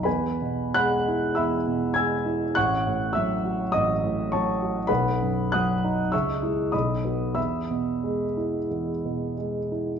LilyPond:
<<
  \new Staff \with { instrumentName = "Grand piano" } { \time 4/4 \key e \major \tempo 4 = 99 <b' gis'' b''>4 <fis'' b'' fis'''>4 <e'' b'' e'''>4 <gis'' e''' gis'''>4 | <fis'' cis''' fis'''>4 <e'' e'''>4 <dis'' dis'''>4 <cis'' a'' cis'''>4 | <b' fis'' b''>4 <fis'' dis''' fis'''>4 <e'' cis''' e'''>4 <dis'' b'' dis'''>4 | <e'' b'' e'''>2. r4 | }
  \new Staff \with { instrumentName = "Grand piano" } { \clef bass \time 4/4 \key e \major e,8 b,8 gis8 e'8 e,8 b,8 gis8 e'8 | a,,8 a,8 fis8 fis'8 a,,8 a,8 fis8 fis'8 | b,,8 fis,8 fis8 dis'8 cis,8 <gis e'>8 b,,8 <b fis'>8 | e,8 b,8 gis8 e'8 e,8 b,8 gis8 e'8 | }
>>